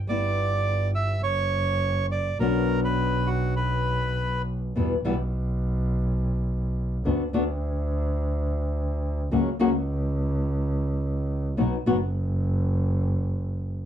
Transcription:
0.07 double bass G1, nylon-string guitar G3 B3 E4, bandoneon D5
0.95 bandoneon E5
1.23 double bass F#1, bandoneon C#5
2.12 bandoneon D5
2.39 double bass B1, nylon-string guitar B2 F#3 B3 D4 F#4, bandoneon A#4
2.84 bandoneon B4
3.27 bandoneon F#4
3.56 bandoneon B4
4.76 double bass E2, nylon-string guitar B2 E3 G3 B3 E4
5.04 double bass B1, nylon-string guitar B2 E3 G3 B3 E4
7.05 double bass D2, nylon-string guitar D3 B3 D4 F#4
7.33 double bass D2, nylon-string guitar D3 B3 D4 F#4
9.31 double bass C#2, nylon-string guitar C#3 F#3 A#3 C#4 F#4
9.59 double bass C#2, nylon-string guitar C#3 F#3 A#3 C#4 F#4
11.57 double bass B1, nylon-string guitar B2 F#3 B3 D#4 F#4
11.86 double bass F#1, nylon-string guitar B2 F#3 B3 D#4 F#4

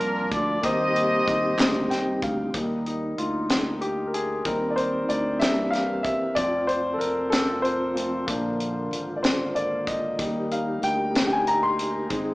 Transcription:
Already playing: grand piano A#2 A#3 D4 F4 D5, tonewheel organ F3 A#3 D4, horn section D4 F4 A#4
0.00 fingered electric bass C2, closed hi-hat
0.31 fingered electric bass D2, horn section D5, kick, closed hi-hat
0.61 fingered electric bass D#2, grand piano D#3 A#3 D#4 G4, tonewheel organ G3 G4, horn section G4 C5 D#5, kick, closed hi-hat
0.65 tonewheel organ C4 D#4, grand piano C5
0.96 closed hi-hat
1.28 fingered electric bass D#2, kick, closed hi-hat
1.58 fingered electric bass D2, snare, clap, closed hi-hat
1.90 fingered electric bass C2, grand piano G5, snare, closed hi-hat
2.22 fingered electric bass D2, grand piano F5, kick, closed hi-hat
2.54 fingered electric bass D#2, grand piano G3 A#3 D#4, french horn section A#3 D#4, tonewheel organ A#3 D#4, kick, closed hi-hat
2.86 grand piano D#4, closed hi-hat
3.18 fingered electric bass D2, grand piano F4, closed hi-hat
3.49 snare, closed hi-hat
3.81 grand piano G4, closed hi-hat
4.07 grand piano A#4
4.14 grand piano G#4, closed hi-hat
4.44 fingered electric bass D#2, grand piano G3 C4 D#4 A#4, french horn section C4 D#4, tonewheel organ C4, kick, closed hi-hat
4.70 grand piano D5
4.76 grand piano C5, closed hi-hat
5.09 fingered electric bass D2, grand piano D5, closed hi-hat
5.39 fingered electric bass C2, french horn section E3 A#3, grand piano E3 A#3 D4 E5, tonewheel organ E3 A#3 G4, snare, closed hi-hat
5.71 grand piano F5, snare, closed hi-hat
6.03 grand piano E5, kick, closed hi-hat
6.35 fingered electric bass F1, grand piano F3 C4 D5, tonewheel organ F3 F4, french horn section F3 F4, kick, closed hi-hat
6.67 grand piano C5, closed hi-hat
6.93 grand piano A4
6.98 fingered electric bass F1, grand piano A#4, closed hi-hat
7.30 grand piano A4, snare, closed hi-hat
7.62 grand piano C5, closed hi-hat
7.94 grand piano F3 A3 C4, closed hi-hat
8.26 fingered electric bass A#1, tonewheel organ D3 A#3 F4, french horn section D3 A#3, grand piano F3 A#3 D4, kick, closed hi-hat
8.60 closed hi-hat
8.91 fingered electric bass G#1, closed hi-hat
9.16 grand piano D5
9.23 grand piano C5, snare, closed hi-hat
9.55 grand piano D5, closed hi-hat
9.87 grand piano D#5, kick, closed hi-hat
10.18 fingered electric bass D#2, grand piano G3 A#3 D#4, french horn section G3 D#4, tonewheel organ D#4 G4, kick, closed hi-hat
10.51 grand piano F5, closed hi-hat
10.82 fingered electric bass D2, grand piano G5, closed hi-hat
11.15 snare, closed hi-hat
11.27 grand piano G5
11.33 grand piano G#5
11.47 grand piano A#5, closed hi-hat
11.63 grand piano C6
11.79 closed hi-hat
12.09 fingered electric bass G#1, french horn section G#3 C4, grand piano G#3 C4 D#4, tonewheel organ C4 G#4, kick, closed hi-hat

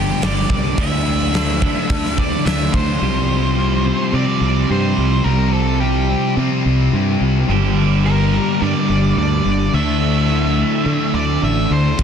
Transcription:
Already playing: distorted electric guitar G2 D3 G3, overdriven electric guitar G2 D3 G3 A#3 D4 G4, clean electric guitar G3 A#3 D4 A4, lead electric guitar G4
0.20 fingered electric bass G1, distorted electric guitar G2 D3 G3, overdriven electric guitar G3 A#3 D4 G4, clean electric guitar A#3, lead electric guitar D5, snare, open hi-hat
0.49 fingered electric bass C2, overdriven electric guitar G2, distorted electric guitar D3 G3, clean electric guitar D4, kick
0.76 fingered electric bass D2, distorted electric guitar D3 A3 D4, overdriven electric guitar D3 E3 A3 D4 E4, clean electric guitar E3, lead electric guitar E5, kick, open hi-hat
1.05 overdriven electric guitar D3, clean electric guitar A3, distorted electric guitar A3 D4
1.32 overdriven electric guitar D3 E3 A3 D4 E4, clean electric guitar E3, snare, open hi-hat
1.60 overdriven electric guitar D3 A3 D4 E4, clean electric guitar D4, kick
1.89 fingered electric bass D2, distorted electric guitar D3 A3 D4, clean electric guitar A4, kick, open hi-hat
2.05 snare
2.16 overdriven electric guitar D3 A3 D4 E4, clean electric guitar D4, lead electric guitar D5, kick
2.45 fingered electric bass D2, distorted electric guitar D3 A3 D4, overdriven electric guitar E3 A3 D4 E4, clean electric guitar A3, lead electric guitar E5, snare, open hi-hat
2.73 fingered electric bass D2, overdriven electric guitar D3, distorted electric guitar A3 D4, clean electric guitar D4, lead electric guitar C5, kick
3.01 fingered electric bass C2, overdriven electric guitar C3 F3 G3 F4 G4, distorted electric guitar C3 G3 C4, clean electric guitar F3
3.28 distorted electric guitar G3 C4, clean electric guitar C4
3.56 distorted electric guitar C3 G3 C4, clean electric guitar F4
3.84 distorted electric guitar G3 C4, clean electric guitar C4
4.12 distorted electric guitar C3 G3 C4, fingered electric bass C3, clean electric guitar F3, lead electric guitar D5
4.40 fingered electric bass C2, distorted electric guitar G3 C4, clean electric guitar C4
4.68 fingered electric bass G2, distorted electric guitar C3 G3 C4, clean electric guitar G4, lead electric guitar C5
4.96 fingered electric bass C2, distorted electric guitar G3 C4, clean electric guitar F4
5.24 fingered electric bass C2, distorted electric guitar C3 G3 C4, clean electric guitar F3, lead electric guitar A#4
5.52 distorted electric guitar G3 C4, clean electric guitar C4, lead electric guitar A4
5.80 distorted electric guitar C3 G3 C4, clean electric guitar F4, lead electric guitar G4
6.09 distorted electric guitar G3 C4, clean electric guitar C4
6.37 distorted electric guitar C3 G3 C4, fingered electric bass C3, clean electric guitar F3
6.65 fingered electric bass C2, distorted electric guitar G3 C4, clean electric guitar C4
6.93 fingered electric bass G2, distorted electric guitar C3 G3 C4, clean electric guitar G4
7.20 fingered electric bass C2, distorted electric guitar G3 C4, clean electric guitar F4
7.48 fingered electric bass G1, overdriven electric guitar G2 D3 G3 A#3 D4 G4, distorted electric guitar G2 D3 G3, clean electric guitar G3
7.77 distorted electric guitar D3 G3, clean electric guitar A#3
8.05 distorted electric guitar G2 D3 G3, clean electric guitar D4, lead electric guitar A#4
8.32 distorted electric guitar D3 G3, clean electric guitar A#3
8.60 distorted electric guitar G2 D3 G3, fingered electric bass G2, clean electric guitar G3, lead electric guitar D5
8.89 fingered electric bass G1, distorted electric guitar D3 G3, clean electric guitar A#3
9.17 fingered electric bass D2, distorted electric guitar G2 D3 G3, clean electric guitar A4, lead electric guitar D5
9.45 fingered electric bass G1, distorted electric guitar D3 G3, clean electric guitar D4
9.73 fingered electric bass D2, distorted electric guitar D3 A3 D4, overdriven electric guitar D3 A3 E4 A4, clean electric guitar A3, lead electric guitar E5
10.02 clean electric guitar A3, distorted electric guitar A3 D4
10.29 distorted electric guitar D3 A3 D4, clean electric guitar E4
10.57 clean electric guitar A3, distorted electric guitar A3 D4
10.85 distorted electric guitar D3 A3 D4, fingered electric bass D3, clean electric guitar A3
11.13 fingered electric bass D2, clean electric guitar A3, distorted electric guitar A3 D4, lead electric guitar D5
11.41 fingered electric bass A1, distorted electric guitar D3 A3 D4, clean electric guitar A4, lead electric guitar E5
11.70 fingered electric bass D2, distorted electric guitar A3 D4, clean electric guitar E4, lead electric guitar C5
11.98 fingered electric bass C2, distorted electric guitar C3 G3, overdriven electric guitar C3 F3 C4, clean electric guitar F3, kick, crash

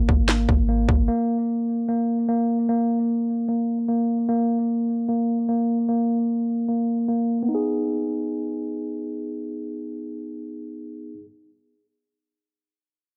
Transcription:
Already playing: tine electric piano A#3
0.09 808-style bass G#1, kick
0.29 tine electric piano A#3, snare, clap
0.49 808-style bass G#1, kick
0.69 tine electric piano A#3
0.89 808-style bass G#1, kick
1.08 tine electric piano A#3
1.89 tine electric piano A#3
2.29 tine electric piano A#3
2.69 tine electric piano A#3
3.49 tine electric piano A#3
3.88 tine electric piano A#3
4.29 tine electric piano A#3
5.08 tine electric piano A#3
5.49 tine electric piano A#3
5.89 tine electric piano A#3
6.69 tine electric piano A#3
7.09 tine electric piano A#3
7.43 tine electric piano B3
7.49 tine electric piano D#4
7.55 tine electric piano G#4

